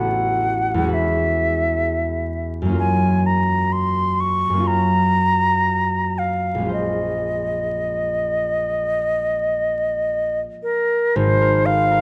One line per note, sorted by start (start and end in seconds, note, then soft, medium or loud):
0.00 0.88 A1 medium
0.00 2.75 B3 soft
0.00 0.81 C#4 soft
0.00 0.84 F#4 soft
0.00 0.87 B4 soft
0.00 0.95 F#5 medium
0.74 2.73 E2 medium
0.74 2.75 G#3 soft
0.82 2.68 C#4 soft
0.82 4.75 F#4 soft
0.89 2.81 B4 medium
0.94 2.53 E5 medium
2.62 4.49 F#2 medium
2.62 4.52 A#3 soft
2.69 4.56 C#4 soft
2.69 4.59 F4 soft
2.75 4.62 A#4 soft
2.75 3.28 G#5 medium
3.26 3.74 A#5 medium
3.72 4.22 C6 medium
4.20 4.69 C#6 medium
4.50 6.67 F#2 medium
4.50 8.44 A#3 soft
4.57 6.60 C#4 soft
4.57 6.64 F4 soft
4.64 8.54 A#4 soft
4.64 6.20 A#5 loud
6.18 6.72 F5 medium
6.55 10.45 A#1 medium
6.55 10.48 G#3 soft
6.61 10.51 C#4 soft
6.65 10.55 F4 soft
6.65 10.59 C5 soft
6.73 10.40 D#5 medium
10.63 11.17 A#4 medium
11.16 12.01 G#1 medium
11.16 11.67 C5 loud
11.41 11.90 A#4 medium
11.66 12.01 C5 soft
11.66 12.01 F5 loud
11.91 12.01 A#4 medium